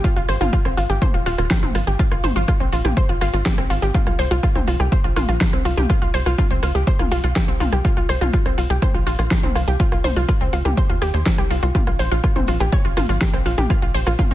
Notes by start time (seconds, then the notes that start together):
0.04 F4 F5, kick, closed hi-hat, shaker
0.16 G#1 F4 F5, closed hi-hat
0.28 G#1 C5 C6, cross-stick, open hi-hat, shaker
0.41 G#1 F4 F5, closed hi-hat, mid tom, shaker
0.53 F4 F5, kick, closed hi-hat, shaker
0.65 G#1 C4 C5, cross-stick, closed hi-hat
0.77 G#1 F4 F5, open hi-hat, shaker
0.89 G#1 G4 G5, closed hi-hat, shaker
1.02 C5 C6, kick, cross-stick, closed hi-hat, mid tom, shaker
1.14 D#1 F4 F5, closed hi-hat
1.26 D#1 F4 F5, open hi-hat, shaker
1.38 D#1 F4 F5, cross-stick, closed hi-hat, shaker
1.50 G4 G5, kick, snare, closed hi-hat, shaker
1.63 G#1 C4 C5, closed hi-hat, mid tom
1.75 G#1 F4 F5, cross-stick, open hi-hat, shaker
1.87 G#1 G4 G5, closed hi-hat, shaker
1.99 F4 F5, kick, closed hi-hat, shaker
2.12 G#1 F4 F5, cross-stick, closed hi-hat
2.23 G#1 C5 C6, open hi-hat, mid tom, shaker
2.35 G#1 F4 F5, closed hi-hat, shaker
2.48 F4 F5, kick, cross-stick, closed hi-hat, shaker
2.60 A#1 C4 C5, closed hi-hat
2.72 A#1 F4 F5, open hi-hat, shaker
2.85 A#1 G4 G5, cross-stick, closed hi-hat, mid tom, shaker
2.97 C5 C6, kick, closed hi-hat, shaker
3.09 G#1 F4 F5, closed hi-hat
3.21 G#1 F4 F5, cross-stick, open hi-hat, shaker
3.33 G#1 F4 F5, closed hi-hat, shaker
3.45 G4 G5, kick, snare, closed hi-hat, mid tom, shaker
3.58 G#1 C4 C5, cross-stick, closed hi-hat
3.70 G#1 F4 F5, open hi-hat, shaker
3.82 G#1 G4 G5, closed hi-hat, shaker
3.94 F4 F5, kick, closed hi-hat, mid tom, shaker
4.07 C2 F4 F5, cross-stick, closed hi-hat
4.19 C2 C5 C6, open hi-hat, shaker
4.31 C2 F4 F5, closed hi-hat, shaker
4.43 F4 F5, kick, cross-stick, closed hi-hat, shaker
4.55 C2 C4 C5, closed hi-hat, mid tom
4.67 C2 F4 F5, open hi-hat, shaker
4.80 C2 G4 G5, cross-stick, closed hi-hat, shaker
4.92 C5 C6, kick, closed hi-hat, shaker
5.04 A#1 F4 F5, closed hi-hat
5.16 A#1 F4 F5, cross-stick, open hi-hat, mid tom, shaker
5.29 A#1 F4 F5, closed hi-hat, shaker
5.40 G4 G5, kick, snare, closed hi-hat, shaker
5.53 C2 C4 C5, cross-stick, closed hi-hat
5.65 C2 F4 F5, open hi-hat, shaker
5.77 C2 G4 G5, closed hi-hat, mid tom, shaker
5.90 F4 F5, kick, cross-stick, closed hi-hat, shaker
6.02 C2 F4 F5, closed hi-hat
6.14 C2 C5 C6, open hi-hat, shaker
6.26 C2 F4 F5, cross-stick, closed hi-hat, shaker
6.38 F4 F5, kick, closed hi-hat, mid tom, shaker
6.51 C#2 C4 C5, closed hi-hat
6.63 C#2 F4 F5, cross-stick, open hi-hat, shaker
6.75 C#2 G4 G5, closed hi-hat, shaker
6.87 C5 C6, kick, closed hi-hat, shaker
6.99 C2 F4 F5, cross-stick, closed hi-hat, mid tom
7.11 C2 F4 F5, open hi-hat, shaker
7.24 C2 F4 F5, closed hi-hat, shaker
7.35 G4 G5, kick, cross-stick, snare, closed hi-hat, shaker
7.48 C2 C4 C5, closed hi-hat
7.60 C2 F4 F5, open hi-hat, mid tom, shaker
7.72 C2 G4 G5, cross-stick, closed hi-hat, shaker
7.84 F4 F5, kick, closed hi-hat, shaker
7.97 C2 F4 F5, closed hi-hat
8.09 C2 C5 C6, cross-stick, open hi-hat, shaker
8.21 C2 F4 F5, closed hi-hat, mid tom, shaker
8.33 F4 F5, kick, closed hi-hat, shaker
8.46 C2 C4 C5, cross-stick, closed hi-hat
8.58 C2 F4 F5, open hi-hat, shaker
8.70 C2 G4 G5, closed hi-hat, shaker
8.82 C5 C6, kick, cross-stick, closed hi-hat, mid tom, shaker
8.94 A#1 F4 F5, closed hi-hat
9.07 A#1 F4 F5, open hi-hat, shaker
9.18 A#1 F4 F5, cross-stick, closed hi-hat, shaker
9.31 G4 G5, kick, snare, closed hi-hat, shaker
9.43 C2 C4 C5, closed hi-hat, mid tom
9.55 C2 F4 F5, cross-stick, open hi-hat, shaker
9.68 C2 G4 G5, closed hi-hat, shaker
9.80 F4 F5, kick, closed hi-hat, shaker
9.92 C2 F4 F5, cross-stick, closed hi-hat
10.04 C2 C5 C6, open hi-hat, mid tom, shaker
10.16 C2 F4 F5, closed hi-hat, shaker
10.29 F4 F5, kick, cross-stick, closed hi-hat, shaker
10.41 C#2 C4 C5, closed hi-hat
10.53 C#2 F4 F5, open hi-hat, shaker
10.65 C#2 G4 G5, cross-stick, closed hi-hat, mid tom, shaker
10.77 C5 C6, kick, closed hi-hat, shaker
10.90 D#2 F4 F5, closed hi-hat
11.02 D#2 G4 G5, cross-stick, open hi-hat, shaker
11.14 D#2 C5 C6, closed hi-hat, shaker
11.26 C4 C5, kick, snare, closed hi-hat, mid tom, shaker
11.38 C2 G4 G5, cross-stick, closed hi-hat
11.50 C2 F4 F5, open hi-hat, shaker
11.63 C2 F4 F5, closed hi-hat, shaker
11.75 F4 F5, kick, closed hi-hat, mid tom, shaker
11.87 A#1 F4 F5, cross-stick, closed hi-hat
11.99 A#1 C5 C6, open hi-hat, shaker
12.11 A#1 F4 F5, closed hi-hat, shaker
12.23 F4 F5, kick, cross-stick, closed hi-hat, shaker
12.36 A#1 C4 C5, closed hi-hat, mid tom
12.47 A#1 F4 F5, open hi-hat, shaker
12.60 A#1 G4 G5, cross-stick, closed hi-hat, shaker
12.73 C#5 C#6, kick, closed hi-hat, shaker
12.85 G#1 F4 F5, closed hi-hat
12.97 G#1 F4 F5, cross-stick, open hi-hat, mid tom, shaker
13.09 G#1 F4 F5, closed hi-hat, shaker
13.21 G4 G5, kick, snare, closed hi-hat, shaker
13.33 A#1 C4 C5, cross-stick, closed hi-hat
13.46 A#1 F4 F5, open hi-hat, shaker
13.58 A#1 G4 G5, closed hi-hat, mid tom, shaker
13.70 F4 F5, kick, cross-stick, closed hi-hat, shaker
13.82 A#1 F4 F5, closed hi-hat
13.94 A#1 C5 C6, open hi-hat, shaker
14.07 A#1 F4 F5, cross-stick, closed hi-hat, shaker
14.19 F4 F5, kick, closed hi-hat, mid tom, shaker
14.31 C4 C5